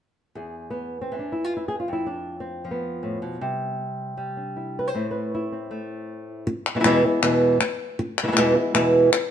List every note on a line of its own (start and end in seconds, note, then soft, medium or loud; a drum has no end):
0.35 1.88 E2 medium
0.35 1.32 G#4 soft
0.70 1.01 B3 medium
1.01 1.18 C4 medium
1.12 1.86 E3 soft
1.19 1.33 D4 medium
1.32 1.44 E4 medium
1.44 1.56 F4 medium
1.57 1.68 E4 medium
1.68 1.79 G#4 medium
1.80 1.92 F4 medium
1.88 3.39 F2 medium
1.93 2.07 E4 medium
2.07 2.39 D4 medium
2.40 2.71 C4 medium
2.65 3.39 F3 soft
2.71 3.84 B3 medium
3.03 3.22 A2 soft
3.22 3.41 B2 soft
3.41 4.92 C3 medium
3.41 4.16 G3 soft
4.17 4.92 G3 soft
4.37 4.92 D4 soft
4.56 4.96 E4 soft
4.79 4.88 B4 medium
4.88 5.11 C5 medium
4.94 6.47 A2 medium
4.94 5.70 A3 soft
4.94 5.51 C4 soft
4.94 5.33 E4 soft
5.11 5.34 B4 medium
5.35 6.28 E4 medium
5.52 6.45 C4 soft
5.71 6.44 A3 soft
6.47 muted nylon-string guitar stroke medium
6.66 clap medium
6.75 6.79 B2 medium
6.75 6.79 E3 medium
6.75 6.79 G#3 medium
6.75 6.79 B3 medium
6.75 6.80 E4 medium
6.80 7.03 E2 medium
6.80 6.83 B2 medium
6.80 6.83 E3 medium
6.80 6.84 G#3 medium
6.80 6.84 B3 medium
6.80 6.84 E4 medium
6.84 7.03 B2 medium
6.84 7.03 E3 medium
6.84 7.03 G#3 medium
6.84 7.03 B3 medium
6.84 7.03 E4 medium
6.84 clap medium
7.04 7.22 E3 soft
7.04 7.22 G#3 soft
7.04 7.22 B3 soft
7.04 7.22 E4 soft
7.22 7.59 E2 medium
7.22 7.59 B2 medium
7.22 7.59 E3 medium
7.22 7.60 G#3 medium
7.22 7.60 B3 medium
7.22 7.60 E4 medium
7.22 clap medium
7.60 muted nylon-string guitar stroke medium
7.60 clap medium
7.99 muted nylon-string guitar stroke medium
8.18 clap medium
8.23 8.26 B2 medium
8.23 8.27 E3 medium
8.23 8.27 G#3 medium
8.23 8.27 B3 medium
8.23 8.27 E4 medium
8.28 8.31 B2 medium
8.28 8.31 E3 medium
8.28 8.31 G#3 medium
8.28 8.32 B3 medium
8.28 8.32 E4 medium
8.32 8.35 B2 medium
8.32 8.36 E3 medium
8.32 8.36 G#3 medium
8.32 8.36 B3 medium
8.32 8.36 E4 medium
8.37 8.55 E2 medium
8.37 8.55 B2 medium
8.37 8.55 E3 medium
8.37 8.55 G#3 medium
8.37 8.54 B3 medium
8.37 8.54 E4 medium
8.37 clap medium
8.55 8.73 E3 soft
8.55 8.74 G#3 soft
8.55 8.74 B3 medium
8.55 8.73 E4 medium
8.74 9.11 E2 medium
8.74 9.11 B2 medium
8.74 9.11 E3 medium
8.74 9.11 G#3 medium
8.74 9.12 B3 medium
8.74 9.12 E4 medium
8.74 clap medium
9.12 muted nylon-string guitar stroke medium
9.12 clap medium